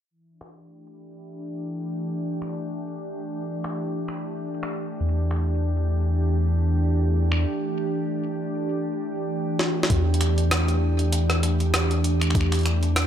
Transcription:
0.10 ambient pad E3
0.31 ambient pad D4
0.41 ambient pad G4, finger snap
0.62 ambient pad A3
2.42 finger snap
3.64 finger snap
4.08 finger snap
4.63 finger snap
5.00 analog synth bass E2
5.31 finger snap
7.32 finger snap
9.59 snare
9.83 snare
9.90 analog synth bass E2, kick, closed hi-hat
10.14 closed hi-hat
10.21 finger snap, closed hi-hat
10.38 closed hi-hat
10.51 cross-stick, closed hi-hat
10.68 closed hi-hat
10.99 closed hi-hat
11.12 closed hi-hat
11.30 cross-stick, closed hi-hat
11.43 closed hi-hat
11.60 closed hi-hat
11.74 cross-stick, closed hi-hat
11.91 closed hi-hat
12.04 closed hi-hat
12.21 finger snap, closed hi-hat
12.30 finger snap
12.35 kick, closed hi-hat
12.41 finger snap
12.52 finger snap, closed hi-hat
12.54 closed hi-hat
12.59 closed hi-hat
12.61 closed hi-hat
12.63 finger snap, closed hi-hat
12.66 closed hi-hat
12.83 closed hi-hat
12.96 cross-stick, closed hi-hat

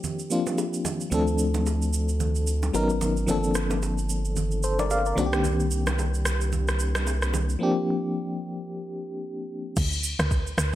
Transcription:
Already playing: fm electric piano F3 A#3 C4 D4 G4
0.04 low conga, shaker
0.19 shaker
0.30 fm electric piano F3 A#3 C4 D4 F4, shaker
0.47 low bongo, shaker
0.58 high bongo, shaker
0.73 shaker
0.85 high bongo, low bongo, low conga, shaker
1.00 shaker
1.10 analog synth bass D2, fm electric piano F3 A3 C4 D4, low conga, shaker
1.14 fm electric piano A4
1.27 shaker
1.38 shaker
1.54 low bongo, shaker
1.66 high bongo, shaker
1.82 shaker
1.93 shaker
2.09 shaker
2.20 low conga, shaker
2.35 shaker
2.47 shaker
2.63 low bongo, shaker
2.73 analog synth bass G#1, fm electric piano F#3 B3 C#4 D#4 A#4, high bongo, shaker
2.90 shaker
3.01 high bongo, low bongo, low conga, shaker
3.17 shaker
3.26 analog synth bass G1, fm electric piano F3 A#3 C4 D4, low conga, shaker
3.31 fm electric piano A4
3.44 shaker
3.55 cross-stick, shaker
3.70 low bongo, shaker
3.82 high bongo, shaker
3.98 shaker
4.09 shaker
4.25 shaker
4.36 low conga, shaker
4.51 shaker
4.63 fm electric piano A4 C5, shaker
4.79 fm electric piano A#4 D5, low bongo, shaker
4.90 fm electric piano D5 F5, high bongo, shaker
5.06 fm electric piano A#4 D5, shaker
5.15 analog synth bass C2, fm electric piano D#3 A#3 C4 D4, high bongo, low bongo, low conga, shaker
5.20 fm electric piano F#4
5.26 fm electric piano G4
5.33 cross-stick, shaker
5.44 low conga, shaker
5.60 shaker
5.71 shaker
5.87 cross-stick, low bongo, shaker
5.99 high bongo, shaker
6.14 shaker
6.25 cross-stick, shaker
6.41 shaker
6.53 low conga, shaker
6.68 cross-stick, shaker
6.79 shaker
6.95 cross-stick, low bongo, shaker
7.07 high bongo, shaker
7.22 cross-stick, shaker
7.34 high bongo, low bongo, low conga, shaker
7.49 shaker
7.59 fm electric piano F3 A#3 C4 D4
7.63 fm electric piano G4
9.77 log drum bass D2, kick, crash, shaker
9.92 shaker
10.03 shaker
10.19 log drum bass D2, cross-stick, shaker
10.31 kick, shaker
10.47 shaker
10.58 log drum bass D2, cross-stick, shaker

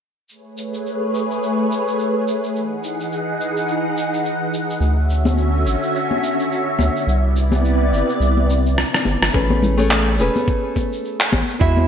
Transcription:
0.29 string machine A3 G#4 B4 C#5, cabasa
0.58 cabasa
0.74 cabasa
0.86 cabasa
1.14 cabasa
1.31 cabasa
1.43 cabasa
1.72 cabasa
1.88 cabasa
1.99 cabasa
2.28 cabasa
2.44 cabasa
2.55 string machine E3 D#4 G#4 F#5, cabasa
2.84 cabasa
3.00 cabasa
3.12 cabasa
3.41 cabasa
3.57 cabasa
3.68 cabasa
3.97 cabasa
4.14 cabasa
4.25 cabasa
4.54 cabasa
4.70 cabasa
4.80 analog synth bass D2, string machine D3 C#4 F#4 E5, cabasa
5.10 cabasa
5.25 high conga, cabasa
5.38 cabasa
5.65 analog synth bass A1, cabasa
5.83 cabasa
5.95 cabasa
6.11 high conga
6.23 cabasa
6.40 cabasa
6.52 cabasa
6.79 analog synth bass D2, high conga, cabasa
6.96 cabasa
7.07 analog synth bass C2, string machine C3 B3 E4 D5, cabasa
7.36 cabasa
7.52 high conga, cabasa
7.65 cabasa
7.92 analog synth bass G1, cabasa
8.09 cabasa
8.20 analog synth bass C2, cabasa
8.37 high conga
8.50 cabasa
8.66 cabasa
8.78 cross-stick, cabasa
8.94 cross-stick
9.05 analog synth bass G1, high conga, cabasa
9.22 analog synth bass G1, cross-stick, cabasa
9.33 analog synth bass A1, nylon-string guitar A3 C#4 G#4 B4, kick, cabasa
9.50 high conga
9.62 low conga, cabasa
9.77 nylon-string guitar A3 C#4 G#4 C#5, cabasa
9.91 clap, high conga, cabasa
10.17 analog synth bass E1, nylon-string guitar A3 C#4 G#4 B4, cabasa
10.36 high conga, cabasa
10.48 kick, cabasa
10.76 kick, high conga, cabasa
10.93 cabasa
11.05 cabasa
11.20 clap
11.32 analog synth bass A1, kick, high conga, cabasa
11.50 cabasa
11.59 analog synth bass E2, nylon-string guitar G#3 E4 F#4 E5, kick, cabasa
11.77 high conga

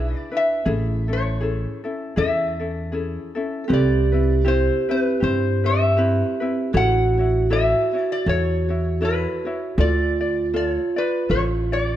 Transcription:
Already playing: upright bass B1, ukulele D4 E4 G#4 B4, resonator guitar played with a steel bar E5
0.17 resonator guitar played with a steel bar D5
0.32 ukulele D4 E4 B4
0.37 resonator guitar played with a steel bar E5
0.65 upright bass A1, ukulele C#4 E4 G#4 A4
1.08 ukulele C#4 E4 A4
1.13 resonator guitar played with a steel bar C#5
1.41 ukulele C#4 E4 G#4 A4
1.84 ukulele C#4 E4 A4
2.16 upright bass E2, ukulele C#4 E4 G#4 A4, resonator guitar played with a steel bar E5
2.60 ukulele C#4 E4 A4
2.92 ukulele C#4 E4 G#4 A4
3.35 ukulele C#4 E4 A4
3.64 ukulele C4 G4, vibraphone A4
3.69 upright bass C2, ukulele E4 B4, vibraphone G4
3.73 resonator guitar played with a steel bar D5
4.12 ukulele C4 E4 B4
4.45 ukulele C4 E4 G4, resonator guitar played with a steel bar C5
4.89 ukulele C4 E4 B4, resonator guitar played with a steel bar B4
5.20 upright bass G2, ukulele C4 E4 G4, resonator guitar played with a steel bar C5
5.64 ukulele C4 E4 B4, resonator guitar played with a steel bar E5
5.97 ukulele C4 E4 G4 B4
6.40 ukulele C4 E4 B4
6.73 upright bass A1, ukulele E4 F#4 A4 C#5, vibraphone F#4, resonator guitar played with a steel bar F#5
7.17 ukulele E4 F#4 C#5
7.50 ukulele E4 F#4 A4 C#5, resonator guitar played with a steel bar E5
7.93 ukulele E4 F#4 C#5
7.99 resonator guitar played with a steel bar D5
8.12 resonator guitar played with a steel bar D5
8.26 upright bass E2, ukulele E4 F#4 A4 C#5, resonator guitar played with a steel bar C#5
8.69 ukulele E4 F#4 C#5
9.01 ukulele E4 F#4 A4 C#5
9.05 resonator guitar played with a steel bar B4
9.45 ukulele E4 F#4 C#5
9.78 upright bass D2, vibraphone F4, ukulele F4 A4 D5, resonator guitar played with a steel bar D5
10.21 ukulele F4 D5
10.54 ukulele F4 A4, resonator guitar played with a steel bar D5
10.67 resonator guitar played with a steel bar C#5
10.96 ukulele F4 D5, resonator guitar played with a steel bar B4
11.29 upright bass A1, ukulele F4 A4, resonator guitar played with a steel bar C#5
11.72 ukulele F4 D5, resonator guitar played with a steel bar D5

